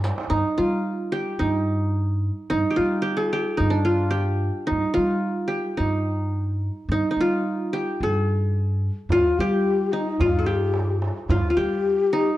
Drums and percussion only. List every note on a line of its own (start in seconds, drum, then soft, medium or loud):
0.04 riq medium
0.04 darbuka tek medium
0.18 darbuka ka medium
9.10 darbuka dum medium
9.38 darbuka ka soft
9.65 darbuka ka soft
10.20 darbuka dum medium
10.74 darbuka tek medium
10.88 darbuka ka soft
11.02 darbuka tek medium
11.29 darbuka dum medium
11.58 darbuka ka soft
11.85 darbuka ka soft